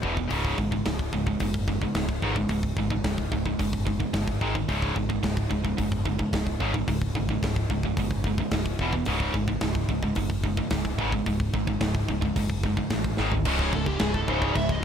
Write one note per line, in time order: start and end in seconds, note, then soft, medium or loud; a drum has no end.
0.02 0.25 E1 medium
0.02 0.14 E2 medium
0.02 0.14 B2 medium
0.02 0.15 E3 medium
0.02 kick medium
0.15 0.27 E2 medium
0.15 0.28 B2 medium
0.15 kick medium
0.28 0.52 C#1 medium
0.28 0.55 C#2 medium
0.28 0.55 G#2 medium
0.28 0.55 C#3 loud
0.28 kick medium
0.28 open hi-hat medium
0.33 0.58 C#3 medium
0.45 kick medium
0.57 0.80 G#1 medium
0.57 0.71 C#2 medium
0.57 0.70 G#2 medium
0.57 kick medium
0.71 0.85 C#2 medium
0.71 0.85 G#2 medium
0.71 kick medium
0.86 1.07 C#1 medium
0.86 1.11 C#2 medium
0.86 1.10 G#2 medium
0.86 kick medium
0.86 snare medium
0.86 open hi-hat medium
0.99 kick medium
1.13 1.35 C#1 medium
1.13 1.25 C#2 medium
1.13 1.25 G#2 medium
1.13 kick medium
1.26 1.39 C#2 medium
1.26 1.39 G#2 medium
1.26 kick medium
1.40 1.83 F#1 medium
1.40 1.65 C#2 medium
1.40 1.65 G#2 medium
1.40 kick medium
1.40 open hi-hat medium
1.54 kick medium
1.68 1.82 C#2 medium
1.68 1.82 G#2 medium
1.68 kick medium
1.82 1.95 C#2 medium
1.82 1.95 G#2 medium
1.82 kick medium
1.95 2.17 C#1 medium
1.95 2.20 C#2 medium
1.95 2.20 G#2 medium
1.95 kick medium
1.95 snare loud
1.95 open hi-hat medium
2.09 kick medium
2.22 2.44 G#1 medium
2.22 2.35 C#2 medium
2.22 2.35 G#2 loud
2.22 2.35 C#3 loud
2.22 kick medium
2.36 2.49 C#2 medium
2.36 2.49 G#2 medium
2.36 kick medium
2.49 2.71 C#1 medium
2.49 2.75 C#2 medium
2.49 2.75 G#2 medium
2.49 kick medium
2.49 open hi-hat medium
2.63 kick medium
2.76 2.98 G#1 medium
2.76 2.91 C#2 medium
2.76 2.91 G#2 medium
2.76 kick medium
2.90 3.04 C#2 soft
2.90 3.04 G#2 medium
2.90 kick medium
3.04 3.26 C#1 medium
3.04 3.30 C#2 medium
3.04 3.30 G#2 medium
3.04 kick medium
3.04 snare loud
3.04 open hi-hat medium
3.18 kick medium
3.31 3.53 C#1 medium
3.31 3.45 C#2 medium
3.31 3.45 G#2 medium
3.31 kick medium
3.46 3.59 C#2 medium
3.46 3.59 G#2 medium
3.46 kick medium
3.59 4.02 F#1 loud
3.59 3.84 C#2 medium
3.59 3.85 G#2 medium
3.59 kick medium
3.59 open hi-hat medium
3.73 kick medium
3.87 3.99 C#2 medium
3.87 3.99 G#2 medium
3.87 kick medium
4.00 4.12 C#2 medium
4.00 4.12 G#2 medium
4.00 kick medium
4.13 4.35 G1 medium
4.13 4.38 C#2 medium
4.13 4.39 G#2 medium
4.13 kick medium
4.13 snare loud
4.13 open hi-hat medium
4.28 kick medium
4.41 4.63 G#1 medium
4.41 4.53 G#2 medium
4.41 4.53 D#3 medium
4.41 4.54 G#3 medium
4.41 kick medium
4.55 4.68 G#2 medium
4.55 4.69 D#3 medium
4.55 kick medium
4.69 4.90 C#1 medium
4.69 4.95 C#2 medium
4.69 4.95 G#2 medium
4.69 4.95 C#3 loud
4.69 kick medium
4.69 open hi-hat soft
4.82 kick medium
4.96 5.17 G#1 medium
4.96 5.08 C#2 medium
4.96 5.08 G#2 medium
4.96 kick medium
5.09 5.22 C#2 medium
5.09 5.22 G#2 medium
5.09 kick medium
5.23 5.45 C#1 medium
5.23 5.48 C#2 medium
5.23 5.48 G#2 medium
5.23 kick medium
5.23 snare loud
5.23 open hi-hat medium
5.37 kick medium
5.50 5.72 C#1 medium
5.50 5.64 C#2 medium
5.50 5.64 G#2 medium
5.50 kick medium
5.65 5.78 C#2 medium
5.65 5.79 G#2 medium
5.65 kick medium
5.78 6.21 F#1 medium
5.78 6.03 C#2 medium
5.78 6.04 G#2 medium
5.78 kick medium
5.78 open hi-hat medium
5.92 kick medium
6.06 6.19 C#2 medium
6.06 6.18 G#2 medium
6.06 kick medium
6.19 6.32 C#2 medium
6.19 6.32 G#2 medium
6.19 kick medium
6.33 6.54 C#1 medium
6.33 6.58 C#2 medium
6.33 6.58 G#2 medium
6.33 kick medium
6.33 snare medium
6.33 open hi-hat medium
6.47 kick medium
6.60 6.82 G#1 medium
6.60 6.73 C#2 medium
6.60 6.73 G#2 medium
6.60 6.73 C#3 loud
6.60 kick medium
6.74 6.87 C#2 medium
6.74 6.87 G#2 medium
6.74 kick medium
6.88 7.09 C#1 medium
6.88 7.13 C#2 medium
6.88 7.13 G#2 medium
6.88 kick medium
6.88 open hi-hat medium
7.02 kick medium
7.15 7.36 G#1 medium
7.15 7.29 C#2 medium
7.15 7.29 G#2 medium
7.15 kick medium
7.29 7.41 C#2 medium
7.29 7.42 G#2 medium
7.29 kick medium
7.42 7.64 C#1 loud
7.42 7.67 C#2 medium
7.42 7.68 G#2 medium
7.42 kick medium
7.42 snare loud
7.42 open hi-hat medium
7.56 kick medium
7.69 7.91 C#1 medium
7.69 7.84 C#2 medium
7.69 7.83 G#2 medium
7.69 kick medium
7.83 7.97 C#2 medium
7.83 7.98 G#2 medium
7.83 kick medium
7.97 8.40 F#1 medium
7.97 8.23 C#2 medium
7.97 8.23 G#2 medium
7.97 kick loud
7.97 open hi-hat medium
8.11 kick medium
8.24 8.38 C#2 medium
8.24 8.38 G#2 medium
8.24 kick medium
8.38 8.53 C#2 medium
8.38 8.52 G#2 medium
8.38 kick medium
8.51 8.73 C#1 medium
8.51 8.78 C#2 medium
8.51 8.78 G#2 medium
8.51 kick medium
8.51 snare loud
8.51 open hi-hat medium
8.66 kick medium
8.79 9.01 E1 medium
8.79 8.92 E2 medium
8.79 8.93 B2 loud
8.79 8.93 E3 medium
8.79 kick medium
8.93 9.07 E2 medium
8.93 9.07 B2 medium
8.93 kick medium
9.05 9.28 C#1 medium
9.05 9.33 C#2 loud
9.05 9.34 G#2 loud
9.05 9.34 C#3 loud
9.05 kick medium
9.05 open hi-hat medium
9.20 kick medium
9.34 9.56 G#1 medium
9.34 9.48 C#2 medium
9.34 9.47 G#2 medium
9.34 kick medium
9.48 9.60 C#2 medium
9.48 9.60 G#2 medium
9.48 kick medium
9.61 9.83 C#1 medium
9.61 9.86 C#2 medium
9.61 9.86 G#2 medium
9.61 kick medium
9.61 snare loud
9.61 open hi-hat medium
9.75 kick medium
9.88 10.10 C#1 medium
9.88 10.03 C#2 medium
9.88 10.02 G#2 medium
9.88 kick medium
10.03 10.15 C#2 medium
10.03 10.16 G#2 medium
10.03 kick medium
10.15 10.60 F#1 medium
10.15 10.41 C#2 medium
10.15 10.42 G#2 medium
10.15 kick medium
10.15 open hi-hat medium
10.30 kick medium
10.44 10.58 C#2 medium
10.44 10.57 G#2 medium
10.44 kick medium
10.57 10.71 C#2 medium
10.57 10.72 G#2 medium
10.57 kick medium
10.70 10.93 C#1 medium
10.70 10.97 C#2 medium
10.70 10.97 G#2 medium
10.70 kick medium
10.70 snare loud
10.70 open hi-hat medium
10.85 kick medium
10.98 11.20 G#1 medium
10.98 11.12 C#2 medium
10.98 11.12 G#2 medium
10.98 11.12 C#3 medium
10.98 kick medium
11.12 11.26 C#2 medium
11.12 11.26 G#2 medium
11.12 kick medium
11.26 11.48 C#1 medium
11.26 11.52 C#2 medium
11.26 11.52 G#2 medium
11.26 kick medium
11.26 open hi-hat soft
11.40 kick medium
11.54 11.75 G#1 medium
11.54 11.68 C#2 medium
11.54 11.68 G#2 medium
11.54 kick medium
11.67 11.81 C#2 medium
11.67 11.82 G#2 medium
11.67 kick medium
11.81 12.03 C#1 medium
11.81 12.07 C#2 medium
11.81 12.07 G#2 medium
11.81 kick medium
11.81 snare loud
11.81 open hi-hat medium
11.95 kick medium
12.09 12.30 C#1 medium
12.09 12.24 C#2 medium
12.09 12.23 G#2 medium
12.09 kick medium
12.22 12.38 C#2 medium
12.22 12.38 G#2 medium
12.22 kick medium
12.36 12.79 F#1 medium
12.36 12.62 C#2 medium
12.36 12.63 G#2 loud
12.36 kick medium
12.36 open hi-hat medium
12.50 kick medium
12.63 12.77 C#2 medium
12.63 12.77 G#2 medium
12.63 kick medium
12.77 12.92 C#2 medium
12.77 12.92 G#2 medium
12.77 kick medium
12.90 13.12 A1 medium
12.90 13.17 C#2 medium
12.90 13.17 G#2 medium
12.90 kick medium
12.90 snare loud
12.90 open hi-hat medium
13.04 kick medium
13.17 13.45 G#1 medium
13.17 13.31 G#2 medium
13.17 13.31 D#3 medium
13.17 13.31 G#3 loud
13.17 snare medium
13.32 13.47 G#2 medium
13.32 13.47 D#3 medium
13.32 floor tom medium
13.45 13.69 C#1 medium
13.45 13.73 C#2 medium
13.45 13.73 G#2 medium
13.45 13.73 C#3 medium
13.45 14.85 G#3 loud
13.45 kick medium
13.45 crash loud
13.45 china medium
13.50 14.85 E4 loud
13.59 kick medium
13.73 13.96 C#1 medium
13.73 13.99 C#2 medium
13.73 13.99 G#2 medium
13.73 13.86 A4 medium
13.73 kick medium
13.86 14.00 G4 medium
13.86 kick medium
13.99 14.23 C#1 medium
13.99 14.26 C#2 medium
13.99 14.26 G#2 medium
13.99 14.15 G#4 medium
13.99 kick medium
13.99 snare loud
13.99 china medium
14.14 14.28 A4 medium
14.14 kick medium
14.28 14.51 C#1 medium
14.28 14.54 C#2 loud
14.28 14.54 G#2 loud
14.28 14.54 C#3 loud
14.28 14.42 C5 medium
14.28 kick medium
14.42 14.56 C#5 medium
14.42 kick medium
14.55 14.78 C#1 loud
14.55 14.80 C#2 medium
14.55 14.81 G#2 medium
14.55 14.69 E5 medium
14.55 kick medium
14.55 china medium
14.69 14.84 D#5 medium
14.69 kick medium